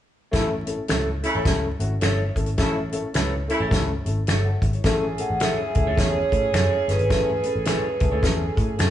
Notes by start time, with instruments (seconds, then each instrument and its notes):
0.32 picked electric bass A1, saxophone section C#3 A3 E4, upright piano A3 C#4 E4 A4, kick, snare, closed hi-hat
0.66 upright piano A3 C#4 E4 A4, closed hi-hat
0.88 picked electric bass C#2, upright piano A3 C#4 E4 A4, clean electric guitar E4 A4 C#5, finger snap, snare, closed hi-hat
1.23 saxophone section C#3 A3 E4, upright piano A3 C#4 E4 A4, closed hi-hat
1.35 picked electric bass A1, clean electric guitar E4 A4 C#5
1.44 picked electric bass C#2, upright piano A3 C#4 E4 A4, kick, snare, closed hi-hat
1.79 picked electric bass G#1, upright piano A3 C#4 E4 F#4, closed hi-hat
2.00 picked electric bass G1, upright piano A3 C#4 E4 A4, clean electric guitar E4 A4 C#5, finger snap, snare, closed hi-hat
2.35 picked electric bass G#1, upright piano A3 C#4 E4 A4, kick, closed hi-hat
2.46 closed hi-hat
2.58 picked electric bass A1, saxophone section C#3 A3 E4, upright piano A3 C#4 E4 A4, kick, snare, closed hi-hat
2.92 upright piano A3 C#4 E4 A4, closed hi-hat
3.13 picked electric bass C#2, upright piano A3 C#4 E4 B4, clean electric guitar E4 A4 C#5, finger snap, snare, closed hi-hat
3.48 saxophone section C#3 A3 E4, upright piano A3 C#4 E4 A4, closed hi-hat
3.60 picked electric bass A1, clean electric guitar E4 A4 C#5
3.69 picked electric bass C#2, upright piano A3 C#4 E4 A4, kick, snare, closed hi-hat
4.05 picked electric bass G#1, upright piano A3 C#4 E4 A4, closed hi-hat
4.27 picked electric bass G1, clean electric guitar E4 A4 C#5, upright piano G#4 E5, finger snap, snare, closed hi-hat
4.44 upright piano A4 F#5
4.62 picked electric bass G#1, upright piano G#4 E5, kick, closed hi-hat
4.73 upright piano E4 C#5, closed hi-hat
4.84 picked electric bass A1, saxophone section E3 C#4 G#4, upright piano A3 C#4 E4 A4, kick, snare, closed hi-hat
5.18 upright piano A3 C#4 E4 A4, vibraphone F#5, closed hi-hat
5.30 picked electric bass A1
5.40 upright piano A3 C#4 E4 A4, clean electric guitar E4 A4 C#5, vibraphone E5, finger snap, snare, closed hi-hat
5.74 picked electric bass C#2, upright piano A3 C#4 E4 A4, vibraphone E5, kick, closed hi-hat
5.87 picked electric bass D2, clean electric guitar E4 A4 C#5
5.96 picked electric bass E2, upright piano A3 C#4 E4 A4, vibraphone C#5, kick, snare, closed hi-hat
6.30 picked electric bass A2, upright piano A3 C#4 E4 A4, vibraphone C#5, kick, closed hi-hat
6.53 picked electric bass F#2, upright piano A3 C#4 E4 A4, clean electric guitar E4 A4 C#5, finger snap, snare, closed hi-hat
6.88 picked electric bass G1, upright piano A3 C#4 E4 A4, vibraphone B4, snare, closed hi-hat
6.99 picked electric bass G#1, closed hi-hat
7.09 picked electric bass A1, upright piano A3 C#4 E4 A4, kick, snare, closed hi-hat
7.43 upright piano A3 C#4 E4 B4, vibraphone A4, closed hi-hat
7.55 picked electric bass A1
7.65 upright piano A3 C#4 E4 G#4, clean electric guitar E4 A4 C#5, finger snap, snare, closed hi-hat
8.00 picked electric bass C#2, upright piano A3 C#4 E4 A4, kick, closed hi-hat
8.12 picked electric bass D2, clean electric guitar E4 A4 C#5
8.22 upright piano A3 C#4 E4 A4, vibraphone A4, kick, snare, closed hi-hat
8.55 picked electric bass A2, upright piano A3 C#4 E4 A4, kick, closed hi-hat
8.76 picked electric bass F#2, upright piano A3 C#4 E4 A4, clean electric guitar E4 A4 C#5, finger snap, snare, closed hi-hat